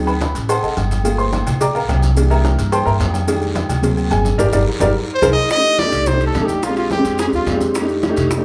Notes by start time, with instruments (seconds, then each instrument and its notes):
Already playing: upright bass D2, upright piano F#3 C4 D#4
0.07 upright piano B4 B5, high conga, low agogo, maracas
0.21 cowbell, high conga, short guiro, maracas
0.35 upright bass A1, cowbell, high conga, short guiro, maracas
0.49 upright piano C5 F#5 A5 C6, cowbell, high conga, low agogo, long guiro, maracas
0.63 upright bass A1, upright piano A4 D#5 F#5 A5, high conga, maracas
0.77 upright bass G1, cowbell, high conga, low agogo, short guiro, maracas
0.91 high conga, low agogo, short guiro, maracas
1.03 upright piano A3 A#3 F4, cowbell, high conga, low agogo, long guiro, maracas
1.18 upright piano C5 C6, high conga, maracas
1.33 cowbell, high conga, low agogo, short guiro, maracas
1.47 upright bass A#1, cowbell, high conga, low conga, low agogo, short guiro, maracas
1.61 upright piano D5 G5 A#5 D6, cowbell, high conga, low conga, long guiro, maracas
1.75 upright piano A#4 F5 G5 A#5, high conga, low agogo, maracas
1.89 upright bass C2, cowbell, high conga, low timbale, low agogo, short guiro, maracas
2.03 high conga, short guiro, maracas
2.15 upright piano E3 G3 A#3 D4, cowbell, low agogo, long guiro, maracas
2.30 upright piano A#4 E5 G5 A#5, low agogo, maracas
2.45 cowbell, high conga, short guiro, maracas
2.59 upright bass G2, cowbell, high conga, short guiro, maracas
2.72 upright piano C5 G5 A5 C6, cowbell, high conga, low agogo, long guiro, maracas
2.86 upright bass G2, upright piano A#4 E5 G5 A#5, high conga, maracas
3.00 upright bass F2, cowbell, high conga, low timbale, low agogo, short guiro, maracas
3.14 high conga, low agogo, short guiro, maracas
3.27 upright piano D#3 G3 A3 D4, cowbell, low agogo, long guiro, maracas
3.41 high conga, maracas
3.55 cowbell, high conga, low agogo, short guiro, maracas
3.69 upright bass D2, cowbell, high conga, low conga, low agogo, short guiro, maracas
3.82 upright piano F#3 A#3 C4, cowbell, high conga, low conga, long guiro, maracas
3.97 high conga, low agogo, maracas
4.11 upright bass G1, upright piano G#4 G#5, cowbell, high conga, low agogo, short guiro, maracas
4.25 high conga, short guiro, maracas
4.38 upright bass G1, upright piano G4 A#4 D5, cowbell, high conga, high timbale, long guiro, maracas
4.53 upright bass G1, upright piano G4 A#4 D5, cowbell, high conga, high timbale, long guiro, maracas
4.80 upright bass G1, upright piano G4 A#4 D5, cowbell, high conga, high timbale, long guiro, maracas
5.13 bansuri C5, trumpet C5
5.22 upright bass C2, upright piano G#4 A#4 C5, cowbell, high conga, high timbale, long guiro, maracas
5.33 bansuri D#5, trumpet D#5
5.50 bansuri D#5, trumpet D#5, high bongo, high conga, high timbale, long guiro, maracas
5.56 upright piano A3 D4 D#4 G4
5.64 high bongo, high conga, maracas
5.78 bansuri D5, trumpet D5, high bongo, high conga, high timbale, short guiro, maracas
5.85 upright piano A3 D4 D#4 G4
5.92 upright bass C2, high conga, low conga, high timbale, short guiro, maracas
6.06 bansuri C5, trumpet C5, high bongo, high conga, low conga, long guiro, maracas
6.12 upright piano A3 D4 D#4 G4
6.21 high bongo, high timbale, maracas
6.25 bansuri A4, trumpet A4
6.34 upright bass A#1, high bongo, low bongo, high conga, high timbale, low timbale, short guiro, maracas
6.41 upright piano A3 D4 D#4 A4, bansuri G4
6.45 trumpet G4, high conga, short guiro, maracas
6.50 high bongo
6.62 bansuri F4, trumpet F4, high bongo, high conga, high timbale, long guiro, maracas
6.69 upright piano G#3 C4 D4 G4
6.76 bansuri F4, trumpet F4, high bongo, high conga, high timbale, maracas
6.90 bansuri G4, trumpet G4, high bongo, high conga, short guiro, maracas
6.98 upright piano G#3 C4 D4 G4
7.05 upright bass F2, high conga, high timbale, short guiro, maracas
7.18 bansuri G#4, trumpet G#4, high bongo, high conga, high timbale, long guiro, maracas
7.25 upright piano G#3 C4 D4 G4
7.33 upright bass D#2, bansuri F4, trumpet F4, high bongo, high conga, maracas
7.47 upright bass F2, high bongo, low bongo, high conga, high timbale, low timbale, short guiro, maracas
7.53 upright piano G#3 C4 D4 G4
7.60 high bongo, high conga, short guiro, maracas
7.74 high bongo, high conga, high timbale, long guiro, maracas
7.81 upright piano A3 D4 D#4 G4
7.89 high bongo, high conga, maracas
8.03 high bongo, high conga, high timbale, short guiro, maracas
8.09 upright piano A3 D4 D#4 G4
8.17 upright bass F2, high conga, low conga, high timbale, short guiro, maracas
8.31 high bongo, high conga, low conga, maracas
8.37 upright piano A3 D4 D#4 G4